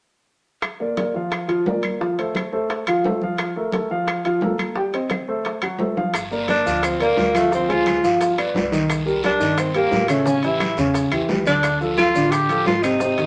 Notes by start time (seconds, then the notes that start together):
0.62 high bongo, high conga, high timbale, claves
0.80 A#3 A#4 D5, high bongo, high conga
0.97 A#3 A#4 D5, high bongo, high conga, high timbale, low timbale
1.14 F3 F4 F5, high bongo, high conga
1.32 high bongo, high conga, high timbale, claves
1.48 F3 F4 F5, high bongo, high conga, high timbale
1.66 A#3 A#4 D5, high bongo, low bongo, high conga, low timbale
1.83 high conga, high timbale, claves
2.00 F3 F4 F5, high bongo, high conga
2.18 A3 A4 C5, high bongo, high conga, high timbale
2.35 high bongo, high conga, high timbale, low timbale, claves
2.52 A3 A4 C5, high bongo, high conga
2.69 high bongo, high conga, high timbale
2.87 F3 F4 F5, high bongo, high conga, high timbale, claves
3.04 A3 A4 C5, high bongo, low bongo, high conga, low timbale
3.22 F3 F4 F5, high conga
3.38 high bongo, high conga, high timbale, claves
3.56 A3 A4 A#4, high bongo, high conga
3.72 A3 A4 A#4, high bongo, high conga, high timbale, low timbale
3.90 F3 F4 F5, high bongo, high conga
4.06 high bongo, high conga, high timbale, claves
4.24 F3 F4 F5, high bongo, high conga, high timbale
4.41 A#3 A4 A#4, high bongo, low bongo, high conga, low timbale
4.58 high conga, high timbale, claves
4.75 G3 G4 G5, high bongo, high conga
4.93 C4 C5 D#5, high bongo, high conga, high timbale
5.10 high bongo, high conga, high timbale, low timbale, claves
5.28 A3 A4 C5, high bongo, high conga
5.45 high bongo, high conga, high timbale
5.62 F#3 F#4 F#5, high bongo, high conga, high timbale, claves
5.79 A3 A4 C5, high conga, low timbale
5.97 F3 F4 F5, low bongo, high conga
6.14 G1, high bongo, high conga, high timbale, long guiro, claves, maracas
6.31 A#3 A#4 D5, high bongo, high conga, maracas
6.48 A#3 D4 A#4 D5, high bongo, high conga, high timbale, low timbale, short guiro, maracas
6.66 D2 F3 F4 F5, high bongo, high conga, short guiro, maracas
6.83 C4, high bongo, high conga, high timbale, long guiro, claves, maracas
7.00 A#3 A#4 D5, high bongo, high conga, high timbale, maracas
7.17 D2, high bongo, low bongo, high conga, low timbale, short guiro, maracas
7.35 F3 A3 F4 F5, high conga, high timbale, short guiro, claves, maracas
7.52 F3 C4 F4 F5, high bongo, high conga, long guiro, maracas
7.69 G#3 F4 G#4 C5, high bongo, high conga, high timbale, maracas
7.86 high bongo, high conga, high timbale, low timbale, short guiro, claves, maracas
8.03 G1 F3 F4 F5, high bongo, high conga, short guiro, maracas
8.20 high bongo, high conga, high timbale, long guiro, maracas
8.38 B3 B4 D5, high bongo, high conga, high timbale, claves, maracas
8.54 C2 B3 B4 D5, high bongo, low bongo, high conga, low timbale, short guiro, maracas
8.72 D#3 D#4 D#5, high conga, short guiro, maracas
8.90 high bongo, high conga, high timbale, long guiro, claves, maracas
9.06 G3 G4 A#4, high bongo, high conga, maracas
9.23 G3 D4 G4 A#4, high bongo, high conga, high timbale, low timbale, short guiro, maracas
9.40 G2 D#3 D#4 D#5, high bongo, high conga, short guiro, maracas
9.58 C4, high bongo, high conga, high timbale, long guiro, claves, maracas
9.74 G3 A#3 G4 A#4, high bongo, high conga, high timbale, maracas
9.91 A2, high bongo, low bongo, high conga, low timbale, short guiro, maracas
10.08 C#3 A3 C#4 C#5, high timbale, short guiro, claves, maracas
10.26 C#3 C#4 C#5, high bongo, high conga, long guiro, maracas
10.43 E3 E4 G4, high bongo, high conga, high timbale, maracas
10.60 high bongo, high conga, high timbale, low timbale, short guiro, claves, maracas
10.77 E2 C#3 C#4 C#5, high bongo, high conga, short guiro, maracas
10.94 high bongo, high conga, high timbale, long guiro, maracas
11.11 E2 E3 E4 G4, high bongo, high conga, high timbale, claves, maracas
11.29 D2 E3 E4 G4, high bongo, low bongo, high conga, low timbale, short guiro, maracas
11.46 D3 D4 D5, high conga, short guiro, maracas
11.63 high bongo, high conga, high timbale, long guiro, claves, maracas
11.81 F3 F4 A4, high bongo, high conga, maracas
11.98 F3 F4 A4, high bongo, high conga, high timbale, low timbale, short guiro, maracas
12.15 A1 D3 D4 D5, high bongo, high conga, short guiro, maracas
12.31 G4, high bongo, high conga, high timbale, long guiro, claves, maracas
12.49 F3 F4 A4, high bongo, high conga, high timbale, maracas
12.66 G#1 F4, high bongo, low bongo, high conga, low timbale, short guiro, maracas
12.83 C3 C4 D#4 C5, high timbale, short guiro, claves, maracas
13.00 C3 C4 C5, high bongo, high conga, long guiro, maracas
13.18 D#3 D#4 F#4, high bongo, high conga, high timbale, maracas